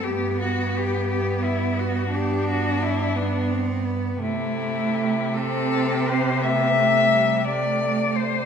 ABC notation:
X:1
M:12/8
L:1/8
Q:3/8=57
K:G
V:1 name="Cello"
G F G G E F G F E D z2 | E3 A2 c e3 d2 c |]
V:2 name="Cello"
B,3 B,3 B,3 B,3 | A,3 C3 A,3 A,3 |]
V:3 name="Cello"
B,6 D3 B, C B, | A,3 C3 B, A, G, A,3 |]
V:4 name="Cello" clef=bass
G,,12 | C,12 |]